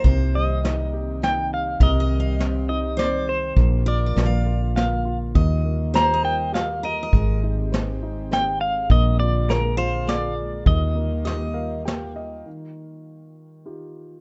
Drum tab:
HH |x-x-x-|x-x-x-|x-x-x-|x---x-|
SD |--o-o-|--o-o-|--o-o-|--o-o-|
BD |o-----|o-----|o-----|o-----|

HH |x-x-x-|x-x-x-|x-x-x-|------|
SD |--o-o-|--o-o-|--o-o-|------|
BD |o-----|o-----|o-----|------|